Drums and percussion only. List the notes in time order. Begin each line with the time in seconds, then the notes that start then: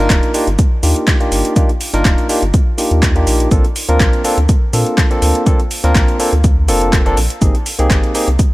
0.10 kick, snare, clap, closed hi-hat, shaker
0.23 closed hi-hat
0.34 open hi-hat, shaker
0.47 closed hi-hat
0.59 kick, closed hi-hat, shaker
0.83 open hi-hat, shaker
0.96 closed hi-hat
1.07 kick, snare, clap, closed hi-hat, open hi-hat
1.21 closed hi-hat
1.32 open hi-hat, shaker
1.45 closed hi-hat
1.56 kick, closed hi-hat, shaker
1.69 closed hi-hat
1.81 open hi-hat, shaker
1.94 snare, closed hi-hat
2.05 kick, snare, clap, closed hi-hat, shaker
2.18 closed hi-hat
2.29 open hi-hat, shaker
2.42 closed hi-hat
2.54 kick, closed hi-hat, shaker
2.78 open hi-hat, shaker
2.91 closed hi-hat
3.03 kick, snare, clap, closed hi-hat, shaker
3.16 closed hi-hat
3.27 open hi-hat, shaker
3.40 closed hi-hat
3.51 kick, closed hi-hat, shaker
3.65 closed hi-hat
3.76 open hi-hat, shaker
3.89 closed hi-hat
4.00 kick, snare, clap, closed hi-hat, shaker
4.13 closed hi-hat
4.25 open hi-hat, shaker
4.38 closed hi-hat
4.49 kick, closed hi-hat, shaker
4.73 open hi-hat, shaker
4.86 closed hi-hat
4.98 kick, snare, clap, closed hi-hat, open hi-hat
5.11 closed hi-hat
5.22 open hi-hat, shaker
5.35 closed hi-hat
5.47 kick, closed hi-hat, shaker
5.60 closed hi-hat
5.71 open hi-hat, shaker
5.84 snare, closed hi-hat
5.95 kick, snare, clap, closed hi-hat, shaker
6.08 closed hi-hat
6.20 open hi-hat, shaker
6.33 closed hi-hat
6.44 kick, closed hi-hat, shaker
6.68 open hi-hat, shaker
6.82 closed hi-hat
6.93 kick, snare, clap, closed hi-hat, shaker
7.06 closed hi-hat
7.17 open hi-hat, shaker
7.30 closed hi-hat
7.42 kick, closed hi-hat, shaker
7.55 closed hi-hat
7.66 open hi-hat, shaker
7.79 closed hi-hat
7.90 kick, snare, clap, closed hi-hat, shaker
8.04 closed hi-hat
8.15 open hi-hat, shaker
8.28 closed hi-hat
8.39 kick, closed hi-hat, shaker